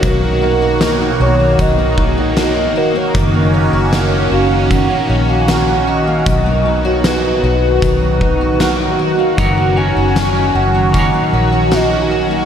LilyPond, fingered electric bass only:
\new Staff \with { instrumentName = "Fingered electric bass" } { \clef bass \time 4/4 \key fis \major \tempo 4 = 77 b,,4. b,,8 b,,4. eis,,8 | fis,,8. fis,,8. fis,,8. r16 ais,,4. | b,,4. b,,8 b,,4. eis,,8 | fis,,8. fis,,8. fis,,8. r16 ais,,4. | }